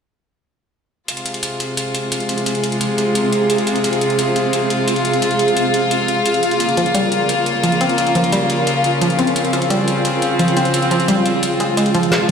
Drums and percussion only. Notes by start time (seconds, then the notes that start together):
1.08 closed hi-hat
1.17 closed hi-hat
1.26 closed hi-hat
1.34 closed hi-hat
1.43 closed hi-hat
1.60 closed hi-hat
1.77 closed hi-hat
1.95 closed hi-hat
2.12 closed hi-hat
2.20 closed hi-hat
2.29 closed hi-hat
2.38 closed hi-hat
2.46 closed hi-hat
2.55 closed hi-hat
2.64 closed hi-hat
2.72 closed hi-hat
2.81 closed hi-hat
2.98 closed hi-hat
3.15 closed hi-hat
3.33 closed hi-hat
3.50 closed hi-hat
3.58 closed hi-hat
3.67 closed hi-hat
3.76 closed hi-hat
3.84 closed hi-hat
3.93 closed hi-hat
4.01 closed hi-hat
4.10 closed hi-hat
4.19 closed hi-hat
4.36 closed hi-hat
4.53 closed hi-hat
4.70 closed hi-hat
4.88 closed hi-hat
4.96 closed hi-hat
5.05 closed hi-hat
5.13 closed hi-hat
5.22 closed hi-hat
5.31 closed hi-hat
5.39 closed hi-hat
5.48 closed hi-hat
5.57 closed hi-hat
5.74 closed hi-hat
5.91 closed hi-hat
6.08 closed hi-hat
6.26 closed hi-hat
6.34 closed hi-hat
6.43 closed hi-hat
6.51 closed hi-hat
6.60 closed hi-hat
6.69 closed hi-hat
6.77 closed hi-hat
6.86 closed hi-hat
6.95 closed hi-hat
7.12 closed hi-hat
7.29 closed hi-hat
7.46 closed hi-hat
7.63 closed hi-hat
7.72 closed hi-hat
7.81 closed hi-hat
7.89 closed hi-hat
7.98 closed hi-hat
8.07 closed hi-hat
8.15 closed hi-hat
8.24 closed hi-hat
8.32 closed hi-hat
8.50 closed hi-hat
8.67 closed hi-hat
8.84 closed hi-hat
9.01 closed hi-hat
9.10 closed hi-hat
9.19 closed hi-hat
9.27 closed hi-hat
9.36 closed hi-hat
9.45 closed hi-hat
9.53 closed hi-hat
9.62 closed hi-hat
9.70 closed hi-hat
9.88 closed hi-hat
10.05 closed hi-hat
10.22 closed hi-hat
10.39 closed hi-hat
10.48 closed hi-hat
10.57 closed hi-hat
10.65 closed hi-hat
10.74 closed hi-hat
10.82 closed hi-hat
10.91 closed hi-hat
11.00 closed hi-hat
11.08 closed hi-hat
11.26 closed hi-hat
11.43 closed hi-hat
11.60 closed hi-hat
11.77 closed hi-hat
11.86 closed hi-hat
11.95 closed hi-hat
12.03 closed hi-hat
12.12 snare, closed hi-hat